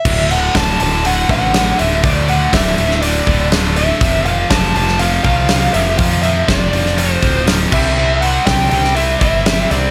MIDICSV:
0, 0, Header, 1, 5, 480
1, 0, Start_track
1, 0, Tempo, 495050
1, 51, Time_signature, 4, 2, 24, 8
1, 9606, End_track
2, 0, Start_track
2, 0, Title_t, "Lead electric guitar"
2, 0, Program_c, 0, 29
2, 0, Note_on_c, 0, 76, 90
2, 300, Note_on_c, 0, 78, 95
2, 308, Note_off_c, 0, 76, 0
2, 520, Note_off_c, 0, 78, 0
2, 545, Note_on_c, 0, 81, 110
2, 763, Note_off_c, 0, 81, 0
2, 779, Note_on_c, 0, 81, 111
2, 1000, Note_off_c, 0, 81, 0
2, 1029, Note_on_c, 0, 78, 88
2, 1254, Note_off_c, 0, 78, 0
2, 1266, Note_on_c, 0, 78, 108
2, 1739, Note_on_c, 0, 76, 89
2, 1753, Note_off_c, 0, 78, 0
2, 1983, Note_off_c, 0, 76, 0
2, 1988, Note_on_c, 0, 74, 86
2, 2223, Note_on_c, 0, 78, 94
2, 2227, Note_off_c, 0, 74, 0
2, 2453, Note_on_c, 0, 76, 90
2, 2464, Note_off_c, 0, 78, 0
2, 2922, Note_off_c, 0, 76, 0
2, 2926, Note_on_c, 0, 74, 77
2, 3374, Note_off_c, 0, 74, 0
2, 3656, Note_on_c, 0, 76, 101
2, 4124, Note_off_c, 0, 76, 0
2, 4128, Note_on_c, 0, 77, 97
2, 4361, Note_on_c, 0, 81, 116
2, 4376, Note_off_c, 0, 77, 0
2, 4588, Note_off_c, 0, 81, 0
2, 4603, Note_on_c, 0, 81, 113
2, 4829, Note_off_c, 0, 81, 0
2, 4843, Note_on_c, 0, 77, 91
2, 5068, Note_off_c, 0, 77, 0
2, 5079, Note_on_c, 0, 77, 102
2, 5559, Note_off_c, 0, 77, 0
2, 5562, Note_on_c, 0, 76, 101
2, 5795, Note_off_c, 0, 76, 0
2, 5799, Note_on_c, 0, 77, 97
2, 6029, Note_off_c, 0, 77, 0
2, 6033, Note_on_c, 0, 76, 90
2, 6286, Note_off_c, 0, 76, 0
2, 6290, Note_on_c, 0, 74, 89
2, 6775, Note_on_c, 0, 72, 70
2, 6785, Note_off_c, 0, 74, 0
2, 7219, Note_off_c, 0, 72, 0
2, 7496, Note_on_c, 0, 76, 112
2, 7962, Note_on_c, 0, 78, 96
2, 7988, Note_off_c, 0, 76, 0
2, 8202, Note_off_c, 0, 78, 0
2, 8206, Note_on_c, 0, 79, 114
2, 8422, Note_off_c, 0, 79, 0
2, 8433, Note_on_c, 0, 79, 108
2, 8665, Note_off_c, 0, 79, 0
2, 8682, Note_on_c, 0, 76, 101
2, 8912, Note_off_c, 0, 76, 0
2, 8923, Note_on_c, 0, 76, 108
2, 9412, Note_off_c, 0, 76, 0
2, 9415, Note_on_c, 0, 74, 96
2, 9606, Note_off_c, 0, 74, 0
2, 9606, End_track
3, 0, Start_track
3, 0, Title_t, "Distorted electric guitar"
3, 0, Program_c, 1, 30
3, 55, Note_on_c, 1, 38, 88
3, 61, Note_on_c, 1, 45, 82
3, 64, Note_on_c, 1, 50, 100
3, 294, Note_off_c, 1, 38, 0
3, 294, Note_off_c, 1, 45, 0
3, 298, Note_on_c, 1, 38, 92
3, 306, Note_off_c, 1, 50, 0
3, 306, Note_on_c, 1, 45, 101
3, 310, Note_on_c, 1, 50, 96
3, 530, Note_off_c, 1, 38, 0
3, 531, Note_off_c, 1, 45, 0
3, 534, Note_on_c, 1, 38, 87
3, 542, Note_off_c, 1, 50, 0
3, 543, Note_on_c, 1, 45, 93
3, 545, Note_on_c, 1, 50, 105
3, 769, Note_off_c, 1, 45, 0
3, 770, Note_off_c, 1, 38, 0
3, 774, Note_on_c, 1, 38, 93
3, 781, Note_off_c, 1, 50, 0
3, 781, Note_on_c, 1, 45, 89
3, 785, Note_on_c, 1, 50, 102
3, 1011, Note_off_c, 1, 38, 0
3, 1019, Note_off_c, 1, 45, 0
3, 1022, Note_on_c, 1, 38, 102
3, 1025, Note_off_c, 1, 50, 0
3, 1031, Note_on_c, 1, 45, 109
3, 1037, Note_on_c, 1, 50, 112
3, 1257, Note_off_c, 1, 38, 0
3, 1257, Note_off_c, 1, 45, 0
3, 1263, Note_off_c, 1, 50, 0
3, 1268, Note_on_c, 1, 38, 86
3, 1269, Note_on_c, 1, 45, 93
3, 1275, Note_on_c, 1, 50, 89
3, 1491, Note_off_c, 1, 45, 0
3, 1492, Note_off_c, 1, 38, 0
3, 1497, Note_off_c, 1, 50, 0
3, 1502, Note_on_c, 1, 45, 84
3, 1503, Note_on_c, 1, 38, 74
3, 1509, Note_on_c, 1, 50, 91
3, 1734, Note_off_c, 1, 38, 0
3, 1736, Note_off_c, 1, 45, 0
3, 1743, Note_off_c, 1, 50, 0
3, 1745, Note_on_c, 1, 38, 83
3, 1748, Note_on_c, 1, 45, 84
3, 1754, Note_on_c, 1, 50, 99
3, 1975, Note_off_c, 1, 38, 0
3, 1981, Note_off_c, 1, 45, 0
3, 1987, Note_on_c, 1, 38, 89
3, 1988, Note_off_c, 1, 50, 0
3, 1993, Note_on_c, 1, 45, 100
3, 1999, Note_on_c, 1, 50, 95
3, 2208, Note_off_c, 1, 38, 0
3, 2217, Note_off_c, 1, 45, 0
3, 2220, Note_off_c, 1, 50, 0
3, 2220, Note_on_c, 1, 38, 87
3, 2228, Note_on_c, 1, 45, 91
3, 2232, Note_on_c, 1, 50, 109
3, 2447, Note_off_c, 1, 38, 0
3, 2453, Note_off_c, 1, 45, 0
3, 2459, Note_on_c, 1, 38, 96
3, 2461, Note_off_c, 1, 50, 0
3, 2464, Note_on_c, 1, 45, 82
3, 2472, Note_on_c, 1, 50, 106
3, 2690, Note_off_c, 1, 38, 0
3, 2695, Note_off_c, 1, 45, 0
3, 2696, Note_off_c, 1, 50, 0
3, 2702, Note_on_c, 1, 38, 101
3, 2707, Note_on_c, 1, 45, 94
3, 2708, Note_on_c, 1, 50, 104
3, 2923, Note_off_c, 1, 38, 0
3, 2931, Note_off_c, 1, 45, 0
3, 2935, Note_off_c, 1, 50, 0
3, 2935, Note_on_c, 1, 38, 109
3, 2942, Note_on_c, 1, 45, 101
3, 2947, Note_on_c, 1, 50, 120
3, 3163, Note_off_c, 1, 38, 0
3, 3169, Note_off_c, 1, 45, 0
3, 3174, Note_off_c, 1, 50, 0
3, 3175, Note_on_c, 1, 38, 106
3, 3180, Note_on_c, 1, 45, 94
3, 3186, Note_on_c, 1, 50, 97
3, 3398, Note_off_c, 1, 38, 0
3, 3408, Note_off_c, 1, 45, 0
3, 3409, Note_on_c, 1, 38, 82
3, 3411, Note_off_c, 1, 50, 0
3, 3419, Note_on_c, 1, 45, 88
3, 3423, Note_on_c, 1, 50, 90
3, 3641, Note_off_c, 1, 38, 0
3, 3648, Note_off_c, 1, 45, 0
3, 3651, Note_off_c, 1, 50, 0
3, 3653, Note_on_c, 1, 38, 93
3, 3660, Note_on_c, 1, 45, 89
3, 3663, Note_on_c, 1, 50, 99
3, 3877, Note_off_c, 1, 38, 0
3, 3880, Note_off_c, 1, 45, 0
3, 3882, Note_off_c, 1, 50, 0
3, 3891, Note_on_c, 1, 41, 100
3, 3899, Note_on_c, 1, 48, 108
3, 3901, Note_on_c, 1, 53, 90
3, 4122, Note_off_c, 1, 48, 0
3, 4125, Note_off_c, 1, 41, 0
3, 4129, Note_on_c, 1, 41, 93
3, 4134, Note_off_c, 1, 53, 0
3, 4134, Note_on_c, 1, 48, 93
3, 4138, Note_on_c, 1, 53, 93
3, 4366, Note_off_c, 1, 48, 0
3, 4370, Note_off_c, 1, 41, 0
3, 4374, Note_on_c, 1, 41, 96
3, 4377, Note_on_c, 1, 48, 104
3, 4379, Note_off_c, 1, 53, 0
3, 4382, Note_on_c, 1, 53, 101
3, 4598, Note_off_c, 1, 41, 0
3, 4605, Note_off_c, 1, 48, 0
3, 4610, Note_on_c, 1, 41, 82
3, 4612, Note_off_c, 1, 53, 0
3, 4617, Note_on_c, 1, 48, 88
3, 4624, Note_on_c, 1, 53, 86
3, 4835, Note_off_c, 1, 41, 0
3, 4845, Note_off_c, 1, 48, 0
3, 4846, Note_on_c, 1, 41, 103
3, 4851, Note_off_c, 1, 53, 0
3, 4856, Note_on_c, 1, 48, 110
3, 4863, Note_on_c, 1, 53, 122
3, 5077, Note_off_c, 1, 41, 0
3, 5083, Note_off_c, 1, 48, 0
3, 5089, Note_on_c, 1, 41, 97
3, 5090, Note_off_c, 1, 53, 0
3, 5094, Note_on_c, 1, 48, 93
3, 5102, Note_on_c, 1, 53, 92
3, 5319, Note_off_c, 1, 41, 0
3, 5321, Note_off_c, 1, 48, 0
3, 5324, Note_off_c, 1, 53, 0
3, 5330, Note_on_c, 1, 41, 83
3, 5332, Note_on_c, 1, 48, 91
3, 5335, Note_on_c, 1, 53, 90
3, 5552, Note_off_c, 1, 41, 0
3, 5558, Note_off_c, 1, 48, 0
3, 5559, Note_off_c, 1, 53, 0
3, 5564, Note_on_c, 1, 41, 89
3, 5570, Note_on_c, 1, 48, 94
3, 5571, Note_on_c, 1, 53, 102
3, 5788, Note_off_c, 1, 41, 0
3, 5794, Note_off_c, 1, 48, 0
3, 5800, Note_on_c, 1, 41, 83
3, 5804, Note_off_c, 1, 53, 0
3, 5805, Note_on_c, 1, 48, 96
3, 5816, Note_on_c, 1, 53, 103
3, 6034, Note_off_c, 1, 41, 0
3, 6043, Note_off_c, 1, 48, 0
3, 6044, Note_off_c, 1, 53, 0
3, 6046, Note_on_c, 1, 41, 105
3, 6055, Note_on_c, 1, 48, 97
3, 6055, Note_on_c, 1, 53, 104
3, 6277, Note_off_c, 1, 41, 0
3, 6280, Note_off_c, 1, 48, 0
3, 6287, Note_off_c, 1, 53, 0
3, 6289, Note_on_c, 1, 41, 88
3, 6292, Note_on_c, 1, 48, 101
3, 6298, Note_on_c, 1, 53, 99
3, 6515, Note_off_c, 1, 41, 0
3, 6522, Note_off_c, 1, 48, 0
3, 6526, Note_on_c, 1, 41, 85
3, 6527, Note_off_c, 1, 53, 0
3, 6534, Note_on_c, 1, 48, 86
3, 6538, Note_on_c, 1, 53, 92
3, 6746, Note_off_c, 1, 41, 0
3, 6751, Note_off_c, 1, 48, 0
3, 6757, Note_on_c, 1, 41, 112
3, 6758, Note_off_c, 1, 53, 0
3, 6763, Note_on_c, 1, 48, 103
3, 6770, Note_on_c, 1, 53, 108
3, 6989, Note_off_c, 1, 41, 0
3, 6996, Note_off_c, 1, 48, 0
3, 7001, Note_on_c, 1, 41, 83
3, 7003, Note_off_c, 1, 53, 0
3, 7008, Note_on_c, 1, 48, 90
3, 7015, Note_on_c, 1, 53, 105
3, 7232, Note_off_c, 1, 41, 0
3, 7240, Note_off_c, 1, 48, 0
3, 7241, Note_off_c, 1, 53, 0
3, 7244, Note_on_c, 1, 41, 84
3, 7251, Note_on_c, 1, 48, 75
3, 7253, Note_on_c, 1, 53, 95
3, 7473, Note_off_c, 1, 41, 0
3, 7477, Note_off_c, 1, 48, 0
3, 7477, Note_off_c, 1, 53, 0
3, 7490, Note_on_c, 1, 48, 93
3, 7497, Note_on_c, 1, 55, 102
3, 7500, Note_on_c, 1, 60, 105
3, 7729, Note_off_c, 1, 48, 0
3, 7733, Note_on_c, 1, 48, 79
3, 7734, Note_off_c, 1, 55, 0
3, 7734, Note_off_c, 1, 60, 0
3, 7738, Note_on_c, 1, 55, 82
3, 7738, Note_on_c, 1, 60, 99
3, 7970, Note_off_c, 1, 48, 0
3, 7974, Note_on_c, 1, 48, 103
3, 7977, Note_off_c, 1, 55, 0
3, 7979, Note_off_c, 1, 60, 0
3, 7981, Note_on_c, 1, 55, 94
3, 7983, Note_on_c, 1, 60, 104
3, 8204, Note_off_c, 1, 48, 0
3, 8208, Note_on_c, 1, 48, 85
3, 8211, Note_off_c, 1, 55, 0
3, 8215, Note_on_c, 1, 55, 90
3, 8218, Note_off_c, 1, 60, 0
3, 8222, Note_on_c, 1, 60, 102
3, 8448, Note_off_c, 1, 48, 0
3, 8452, Note_off_c, 1, 55, 0
3, 8452, Note_on_c, 1, 48, 80
3, 8456, Note_on_c, 1, 55, 101
3, 8458, Note_off_c, 1, 60, 0
3, 8462, Note_on_c, 1, 60, 96
3, 8676, Note_off_c, 1, 48, 0
3, 8683, Note_off_c, 1, 55, 0
3, 8687, Note_off_c, 1, 60, 0
3, 8687, Note_on_c, 1, 48, 108
3, 8695, Note_on_c, 1, 55, 116
3, 8699, Note_on_c, 1, 60, 114
3, 8924, Note_off_c, 1, 48, 0
3, 8929, Note_off_c, 1, 55, 0
3, 8930, Note_off_c, 1, 60, 0
3, 8936, Note_on_c, 1, 48, 98
3, 8941, Note_on_c, 1, 55, 109
3, 8942, Note_on_c, 1, 60, 110
3, 9164, Note_off_c, 1, 48, 0
3, 9169, Note_off_c, 1, 55, 0
3, 9175, Note_on_c, 1, 48, 84
3, 9179, Note_off_c, 1, 60, 0
3, 9181, Note_on_c, 1, 55, 93
3, 9190, Note_on_c, 1, 60, 85
3, 9406, Note_off_c, 1, 48, 0
3, 9414, Note_off_c, 1, 55, 0
3, 9418, Note_on_c, 1, 48, 89
3, 9420, Note_off_c, 1, 60, 0
3, 9426, Note_on_c, 1, 55, 78
3, 9431, Note_on_c, 1, 60, 94
3, 9606, Note_off_c, 1, 48, 0
3, 9606, Note_off_c, 1, 55, 0
3, 9606, Note_off_c, 1, 60, 0
3, 9606, End_track
4, 0, Start_track
4, 0, Title_t, "Picked electric bass"
4, 0, Program_c, 2, 34
4, 55, Note_on_c, 2, 26, 91
4, 471, Note_off_c, 2, 26, 0
4, 533, Note_on_c, 2, 26, 99
4, 742, Note_off_c, 2, 26, 0
4, 793, Note_on_c, 2, 26, 92
4, 1201, Note_off_c, 2, 26, 0
4, 1251, Note_on_c, 2, 33, 95
4, 1668, Note_off_c, 2, 33, 0
4, 1742, Note_on_c, 2, 26, 83
4, 1946, Note_off_c, 2, 26, 0
4, 1974, Note_on_c, 2, 38, 96
4, 2390, Note_off_c, 2, 38, 0
4, 2453, Note_on_c, 2, 26, 102
4, 2660, Note_off_c, 2, 26, 0
4, 2695, Note_on_c, 2, 26, 91
4, 3110, Note_off_c, 2, 26, 0
4, 3170, Note_on_c, 2, 26, 92
4, 3795, Note_off_c, 2, 26, 0
4, 3893, Note_on_c, 2, 29, 94
4, 4308, Note_off_c, 2, 29, 0
4, 4367, Note_on_c, 2, 29, 100
4, 4577, Note_off_c, 2, 29, 0
4, 4610, Note_on_c, 2, 29, 90
4, 5027, Note_off_c, 2, 29, 0
4, 5086, Note_on_c, 2, 36, 88
4, 5505, Note_off_c, 2, 36, 0
4, 5566, Note_on_c, 2, 29, 87
4, 5776, Note_off_c, 2, 29, 0
4, 5810, Note_on_c, 2, 41, 99
4, 6227, Note_off_c, 2, 41, 0
4, 6290, Note_on_c, 2, 29, 106
4, 6498, Note_off_c, 2, 29, 0
4, 6523, Note_on_c, 2, 29, 93
4, 6943, Note_off_c, 2, 29, 0
4, 7008, Note_on_c, 2, 26, 92
4, 7426, Note_off_c, 2, 26, 0
4, 7488, Note_on_c, 2, 36, 90
4, 8115, Note_off_c, 2, 36, 0
4, 8211, Note_on_c, 2, 36, 97
4, 8420, Note_off_c, 2, 36, 0
4, 8456, Note_on_c, 2, 36, 85
4, 8871, Note_off_c, 2, 36, 0
4, 8935, Note_on_c, 2, 31, 84
4, 9351, Note_off_c, 2, 31, 0
4, 9417, Note_on_c, 2, 36, 88
4, 9606, Note_off_c, 2, 36, 0
4, 9606, End_track
5, 0, Start_track
5, 0, Title_t, "Drums"
5, 50, Note_on_c, 9, 36, 124
5, 51, Note_on_c, 9, 49, 127
5, 147, Note_off_c, 9, 36, 0
5, 148, Note_off_c, 9, 49, 0
5, 294, Note_on_c, 9, 46, 58
5, 391, Note_off_c, 9, 46, 0
5, 532, Note_on_c, 9, 46, 92
5, 533, Note_on_c, 9, 36, 91
5, 535, Note_on_c, 9, 38, 112
5, 629, Note_off_c, 9, 36, 0
5, 629, Note_off_c, 9, 46, 0
5, 632, Note_off_c, 9, 38, 0
5, 774, Note_on_c, 9, 46, 65
5, 871, Note_off_c, 9, 46, 0
5, 1017, Note_on_c, 9, 46, 91
5, 1114, Note_off_c, 9, 46, 0
5, 1254, Note_on_c, 9, 36, 90
5, 1254, Note_on_c, 9, 46, 62
5, 1351, Note_off_c, 9, 36, 0
5, 1351, Note_off_c, 9, 46, 0
5, 1494, Note_on_c, 9, 46, 95
5, 1497, Note_on_c, 9, 38, 127
5, 1591, Note_off_c, 9, 46, 0
5, 1594, Note_off_c, 9, 38, 0
5, 1737, Note_on_c, 9, 46, 69
5, 1834, Note_off_c, 9, 46, 0
5, 1975, Note_on_c, 9, 36, 126
5, 1975, Note_on_c, 9, 46, 101
5, 2072, Note_off_c, 9, 36, 0
5, 2072, Note_off_c, 9, 46, 0
5, 2215, Note_on_c, 9, 46, 65
5, 2312, Note_off_c, 9, 46, 0
5, 2453, Note_on_c, 9, 36, 98
5, 2457, Note_on_c, 9, 46, 104
5, 2460, Note_on_c, 9, 38, 120
5, 2550, Note_off_c, 9, 36, 0
5, 2554, Note_off_c, 9, 46, 0
5, 2557, Note_off_c, 9, 38, 0
5, 2696, Note_on_c, 9, 46, 75
5, 2793, Note_off_c, 9, 46, 0
5, 2821, Note_on_c, 9, 38, 35
5, 2918, Note_off_c, 9, 38, 0
5, 2933, Note_on_c, 9, 46, 98
5, 3030, Note_off_c, 9, 46, 0
5, 3171, Note_on_c, 9, 36, 87
5, 3171, Note_on_c, 9, 46, 73
5, 3268, Note_off_c, 9, 36, 0
5, 3268, Note_off_c, 9, 46, 0
5, 3412, Note_on_c, 9, 46, 90
5, 3415, Note_on_c, 9, 38, 127
5, 3509, Note_off_c, 9, 46, 0
5, 3512, Note_off_c, 9, 38, 0
5, 3649, Note_on_c, 9, 46, 67
5, 3746, Note_off_c, 9, 46, 0
5, 3889, Note_on_c, 9, 36, 127
5, 3889, Note_on_c, 9, 46, 98
5, 3986, Note_off_c, 9, 36, 0
5, 3986, Note_off_c, 9, 46, 0
5, 4128, Note_on_c, 9, 46, 60
5, 4225, Note_off_c, 9, 46, 0
5, 4367, Note_on_c, 9, 46, 92
5, 4368, Note_on_c, 9, 36, 94
5, 4370, Note_on_c, 9, 38, 123
5, 4464, Note_off_c, 9, 46, 0
5, 4465, Note_off_c, 9, 36, 0
5, 4467, Note_off_c, 9, 38, 0
5, 4612, Note_on_c, 9, 46, 71
5, 4709, Note_off_c, 9, 46, 0
5, 4732, Note_on_c, 9, 38, 37
5, 4829, Note_off_c, 9, 38, 0
5, 4842, Note_on_c, 9, 46, 88
5, 4939, Note_off_c, 9, 46, 0
5, 5082, Note_on_c, 9, 46, 60
5, 5086, Note_on_c, 9, 36, 93
5, 5179, Note_off_c, 9, 46, 0
5, 5183, Note_off_c, 9, 36, 0
5, 5320, Note_on_c, 9, 46, 96
5, 5323, Note_on_c, 9, 38, 120
5, 5417, Note_off_c, 9, 46, 0
5, 5420, Note_off_c, 9, 38, 0
5, 5566, Note_on_c, 9, 46, 69
5, 5663, Note_off_c, 9, 46, 0
5, 5804, Note_on_c, 9, 46, 106
5, 5807, Note_on_c, 9, 36, 127
5, 5901, Note_off_c, 9, 46, 0
5, 5904, Note_off_c, 9, 36, 0
5, 6045, Note_on_c, 9, 46, 67
5, 6142, Note_off_c, 9, 46, 0
5, 6287, Note_on_c, 9, 36, 97
5, 6287, Note_on_c, 9, 46, 94
5, 6290, Note_on_c, 9, 38, 127
5, 6384, Note_off_c, 9, 36, 0
5, 6384, Note_off_c, 9, 46, 0
5, 6387, Note_off_c, 9, 38, 0
5, 6528, Note_on_c, 9, 46, 75
5, 6625, Note_off_c, 9, 46, 0
5, 6650, Note_on_c, 9, 38, 35
5, 6747, Note_off_c, 9, 38, 0
5, 6768, Note_on_c, 9, 46, 94
5, 6865, Note_off_c, 9, 46, 0
5, 7004, Note_on_c, 9, 46, 70
5, 7006, Note_on_c, 9, 36, 83
5, 7101, Note_off_c, 9, 46, 0
5, 7103, Note_off_c, 9, 36, 0
5, 7247, Note_on_c, 9, 46, 109
5, 7250, Note_on_c, 9, 38, 117
5, 7344, Note_off_c, 9, 46, 0
5, 7347, Note_off_c, 9, 38, 0
5, 7487, Note_on_c, 9, 57, 116
5, 7488, Note_on_c, 9, 36, 115
5, 7584, Note_off_c, 9, 57, 0
5, 7585, Note_off_c, 9, 36, 0
5, 7973, Note_on_c, 9, 46, 61
5, 8070, Note_off_c, 9, 46, 0
5, 8210, Note_on_c, 9, 36, 92
5, 8211, Note_on_c, 9, 46, 85
5, 8214, Note_on_c, 9, 38, 125
5, 8307, Note_off_c, 9, 36, 0
5, 8308, Note_off_c, 9, 46, 0
5, 8311, Note_off_c, 9, 38, 0
5, 8448, Note_on_c, 9, 46, 72
5, 8545, Note_off_c, 9, 46, 0
5, 8574, Note_on_c, 9, 38, 37
5, 8671, Note_off_c, 9, 38, 0
5, 8693, Note_on_c, 9, 46, 82
5, 8790, Note_off_c, 9, 46, 0
5, 8932, Note_on_c, 9, 36, 95
5, 8932, Note_on_c, 9, 46, 69
5, 9029, Note_off_c, 9, 36, 0
5, 9029, Note_off_c, 9, 46, 0
5, 9173, Note_on_c, 9, 46, 87
5, 9175, Note_on_c, 9, 38, 115
5, 9269, Note_off_c, 9, 46, 0
5, 9272, Note_off_c, 9, 38, 0
5, 9416, Note_on_c, 9, 46, 68
5, 9513, Note_off_c, 9, 46, 0
5, 9606, End_track
0, 0, End_of_file